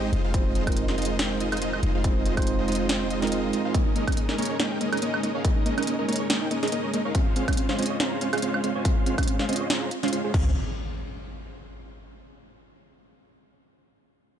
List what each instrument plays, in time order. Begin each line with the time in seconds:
Already playing: 808-style bass G#1, supersaw synth G#3 D#4 G4 C5 D#5, tine electric piano G#3 C4 D#4 G4 C5
0.12 808-style bass F1, supersaw synth G#3 D#4 F4 C5 D#5, closed hi-hat
0.24 supersaw synth G#3 D#4 F4 C5 F5
0.33 tine electric piano G#3 C4 D#4 F4 C5, supersaw synth G#3 D#4 F4 C5 D#5, kick, closed hi-hat
0.55 supersaw synth G#3 D#4 F4 C5 D#5, closed hi-hat
0.65 tine electric piano G#3 C4 D#4 F4 A#4, supersaw synth G#3 D#4 F4 C5 D#5, kick, closed hi-hat, high woodblock
0.72 closed hi-hat
0.77 closed hi-hat
0.88 supersaw synth G#3 D#4 F4 C5 D#5, snare
0.98 supersaw synth G#3 D#4 F4 C5 D#5, closed hi-hat
1.02 closed hi-hat
1.05 closed hi-hat
1.19 supersaw synth G#3 D#4 F4 C5 G5, snare, closed hi-hat
1.40 supersaw synth G#3 D#4 F4 C5 D#5, closed hi-hat
1.52 supersaw synth G#3 D#4 F4 C5 D#5, closed hi-hat, high woodblock
1.57 closed hi-hat
1.62 supersaw synth G#3 D#4 F4 C5 D#5, closed hi-hat
1.73 high woodblock
1.83 808-style bass F1, supersaw synth G#3 D#4 F4 C5 D#5, closed hi-hat
1.95 supersaw synth G#3 D#4 F4 C5 F5
2.03 tine electric piano G#3 C4 D#4 F4 C5, supersaw synth G#3 D#4 F4 C5 D#5, kick, closed hi-hat
2.26 supersaw synth G#3 D#4 F4 C5 D#5, closed hi-hat
2.35 tine electric piano G#3 C4 D#4 F4 C5, supersaw synth G#3 D#4 F4 C5 D#5, kick, closed hi-hat, high woodblock
2.42 closed hi-hat
2.47 closed hi-hat
2.59 supersaw synth G#3 D#4 F4 C5 D#5
2.68 supersaw synth G#3 D#4 F4 C5 D#5, closed hi-hat
2.72 closed hi-hat
2.75 closed hi-hat
2.89 supersaw synth G#3 D#4 F4 C5 G5, snare, closed hi-hat
3.10 supersaw synth G#3 D#4 F4 C5 D#5, closed hi-hat
3.20 tine electric piano G#3 C4 D#4 F4 A#4, supersaw synth G#3 D#4 F4 C5 D#5, snare, closed hi-hat
3.27 closed hi-hat
3.32 supersaw synth G#3 D#4 F4 C5 D#5, closed hi-hat
3.53 supersaw synth G#3 D#4 F4 C5 D#5, closed hi-hat
3.65 supersaw synth G#3 D#4 F4 C5 F5
3.74 supersaw synth G#3 C#4 D#4 A#4 D#5, synth arpeggio sound A#3, kick, closed hi-hat
3.86 synth arpeggio sound D#4
3.95 supersaw synth G#3 C#4 D#4 A#4 D#5, synth arpeggio sound A#3, closed hi-hat
4.07 supersaw synth G#3 C#4 D#4 A#4 D#5, synth arpeggio sound C#4, kick, closed hi-hat, high woodblock
4.12 closed hi-hat
4.17 synth arpeggio sound A#3, closed hi-hat
4.28 supersaw synth G#3 C#4 D#4 A#4 D#5, synth arpeggio sound A#4, snare
4.38 supersaw synth G#3 C#4 D#4 A#4 C#5, synth arpeggio sound A#3, closed hi-hat
4.42 closed hi-hat
4.45 closed hi-hat
4.49 synth arpeggio sound C#5
4.59 supersaw synth G#3 C#4 D#4 A#4 G5, synth arpeggio sound A#3, snare, closed hi-hat
4.71 synth arpeggio sound D#4
4.80 supersaw synth G#3 C#4 D#4 A#4 D#5, synth arpeggio sound A#3, closed hi-hat
4.92 supersaw synth G#3 C#4 D#4 A#4 D#5, synth arpeggio sound G#4, closed hi-hat, high woodblock
4.97 closed hi-hat
5.02 supersaw synth G#3 C#4 D#4 A#4 D#5, synth arpeggio sound A#3, closed hi-hat
5.14 synth arpeggio sound C#5, high woodblock
5.23 supersaw synth G#3 C#4 D#4 A#4 D#5, synth arpeggio sound A#3, closed hi-hat
5.35 supersaw synth G#3 C#4 D#4 A#4 F5, synth arpeggio sound C#5
5.44 supersaw synth G#3 C#4 D#4 A#4 D#5, synth arpeggio sound A#3, kick, closed hi-hat
5.56 synth arpeggio sound D#4
5.65 supersaw synth G#3 C#4 D#4 A#4 D#5, synth arpeggio sound A#3, closed hi-hat
5.77 supersaw synth G#3 C#4 D#4 A#4 D#5, synth arpeggio sound C#4, closed hi-hat, high woodblock
5.83 closed hi-hat
5.87 synth arpeggio sound A#3, closed hi-hat
5.99 supersaw synth G#3 C#4 D#4 A#4 D#5, synth arpeggio sound A#4
6.08 supersaw synth G#3 C#4 D#4 A#4 C#5, synth arpeggio sound A#3, closed hi-hat
6.13 closed hi-hat
6.16 closed hi-hat
6.20 synth arpeggio sound C#5
6.29 supersaw synth G#3 C#4 D#4 A#4 G5, synth arpeggio sound A#3, snare, closed hi-hat
6.41 synth arpeggio sound D#4
6.51 supersaw synth G#3 C#4 D#4 A#4 D#5, synth arpeggio sound A#3, closed hi-hat
6.63 supersaw synth G#3 C#4 D#4 A#4 D#5, synth arpeggio sound G#4, snare, closed hi-hat
6.68 closed hi-hat
6.72 supersaw synth G#3 C#4 D#4 A#4 D#5, synth arpeggio sound A#3, closed hi-hat
6.84 synth arpeggio sound C#5
6.93 supersaw synth G#3 C#4 D#4 A#4 D#5, synth arpeggio sound A#3, closed hi-hat
7.05 supersaw synth G#3 C#4 D#4 A#4 F5, synth arpeggio sound C#5
7.15 supersaw synth G#3 C#4 F4 C5 F5, synth arpeggio sound C4, kick, closed hi-hat
7.27 synth arpeggio sound F4
7.36 supersaw synth G#3 C#4 F4 C5 F5, synth arpeggio sound C4, closed hi-hat
7.48 supersaw synth G#3 C#4 F4 C5 F5, synth arpeggio sound C#4, kick, closed hi-hat, high woodblock
7.53 closed hi-hat
7.57 synth arpeggio sound C4, closed hi-hat
7.69 supersaw synth G#3 C#4 F4 C5 F5, synth arpeggio sound C5, snare
7.79 supersaw synth G#3 C#4 F4 C5 D#5, synth arpeggio sound C4, closed hi-hat
7.82 closed hi-hat
7.86 closed hi-hat
7.90 synth arpeggio sound C#5
8.00 supersaw synth G#3 C#4 F4 C5 A#5, synth arpeggio sound C4, snare, closed hi-hat
8.12 synth arpeggio sound F4
8.21 supersaw synth G#3 C#4 F4 C5 F5, synth arpeggio sound C4, closed hi-hat
8.33 supersaw synth G#3 C#4 F4 C5 F5, synth arpeggio sound G#4, closed hi-hat, high woodblock
8.38 closed hi-hat
8.42 supersaw synth G#3 C#4 F4 C5 F5, synth arpeggio sound C4, closed hi-hat
8.54 synth arpeggio sound C#5, high woodblock
8.64 supersaw synth G#3 C#4 F4 C5 F5, synth arpeggio sound C4, closed hi-hat
8.75 supersaw synth G#3 C#4 F4 C5 G#5, synth arpeggio sound C#5
8.85 supersaw synth G#3 C#4 F4 C5 F5, synth arpeggio sound C4, kick, closed hi-hat
8.97 synth arpeggio sound F4
9.06 supersaw synth G#3 C#4 F4 C5 F5, synth arpeggio sound C4, closed hi-hat
9.18 supersaw synth G#3 C#4 F4 C5 F5, synth arpeggio sound C#4, kick, closed hi-hat, high woodblock
9.23 closed hi-hat
9.28 synth arpeggio sound C4, closed hi-hat
9.39 supersaw synth G#3 C#4 F4 C5 F5, synth arpeggio sound C5, snare
9.49 supersaw synth G#3 C#4 F4 C5 D#5, synth arpeggio sound C4, closed hi-hat
9.53 closed hi-hat
9.56 closed hi-hat
9.61 synth arpeggio sound C#5
9.70 supersaw synth G#3 C#4 F4 C5 A#5, synth arpeggio sound C4, snare, closed hi-hat
9.82 synth arpeggio sound F4
9.91 synth arpeggio sound F4, closed hi-hat
10.03 supersaw synth G#3 C#4 F4 C5 F5, synth arpeggio sound C#4, snare, closed hi-hat
10.08 closed hi-hat
10.12 supersaw synth G#3 C#4 F4 C5 F5, synth arpeggio sound F4, closed hi-hat
10.24 supersaw synth G#3 C#4 F4 C5 F5, synth arpeggio sound G#4
10.34 808-style bass C#2, supersaw synth G#3 C#4 F4 C5 F5, synth arpeggio sound C4, kick, crash, impact